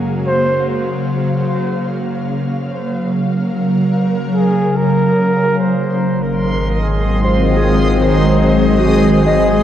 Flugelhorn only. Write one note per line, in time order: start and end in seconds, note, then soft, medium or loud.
0.27 0.65 C5 loud
4.35 4.78 G#4 medium
4.77 5.61 A#4 medium
5.60 6.24 C5 medium
6.22 6.85 A#4 medium
6.83 7.27 G#4 medium
7.26 8.05 F4 medium
8.05 8.56 D#4 medium
8.86 9.24 G#4 medium
9.25 9.63 G#4 medium